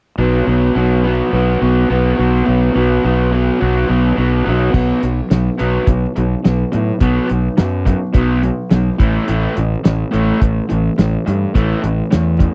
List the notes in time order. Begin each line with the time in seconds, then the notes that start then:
0.18 B1 B2 F#3 B3
0.47 B1 B2 F#3 B3
0.75 B1 B2 F#3 B3
1.03 B2 F#3 B3
1.32 B1 B2 F#3 B3
1.61 B1 B2 F#3 B3
1.90 B1 B2 F#3 B3
2.17 B1 B2 F#3 B3
2.45 B1 B2 F#3 B3
2.75 B1 B2 F#3 B3
3.04 B1 B2 F#3 B3
3.32 B2 F#3 B3
3.60 B1 B2 F#3 B3
3.88 B1 B2 F#3 B3
4.16 B1 B2 F#3 B3
4.45 B1 B2 F#3 B3
4.73 B1 B2 F#3 B3, kick, crash
5.02 B1 B2 F#3, closed hi-hat
5.30 B1 B2 F#3, snare, closed hi-hat
5.58 B1 B2 F#3 B3, closed hi-hat
5.87 B1 B2 F#3, kick, closed hi-hat
6.16 B1 B2 F#3, closed hi-hat
6.44 B1 B2 F#3, snare, closed hi-hat
6.72 A2 B2 F#3, closed hi-hat
7.00 B1 B2 F#3 B3, kick, closed hi-hat
7.28 B1 B2 F#3, closed hi-hat
7.58 F#2 B2 F#3, snare, closed hi-hat
7.85 B2 F#3, kick, closed hi-hat
8.13 B1 B2 F#3 B3, kick, closed hi-hat
8.43 B2 F#3, closed hi-hat
8.71 B1 B2 F#3, snare, closed hi-hat
8.98 A1 A2 E3 A3, kick, snare, closed hi-hat
9.27 A1 A2 E3 A3, closed hi-hat
9.56 A1 A2 E3, closed hi-hat
9.84 A1 A2 E3, snare, closed hi-hat
10.11 A1 A2 E3 A3, closed hi-hat
10.40 A1 A2 E3, kick, closed hi-hat
10.69 A1 A2 E3, closed hi-hat
10.98 A1 A2 E3, snare, closed hi-hat
11.26 G2 A2 E3, closed hi-hat
11.54 A1 A2 E3 A3, kick, closed hi-hat
11.83 A1 A2 E3, closed hi-hat
12.11 E2 A2 E3, snare, closed hi-hat
12.39 A2 E3, kick, closed hi-hat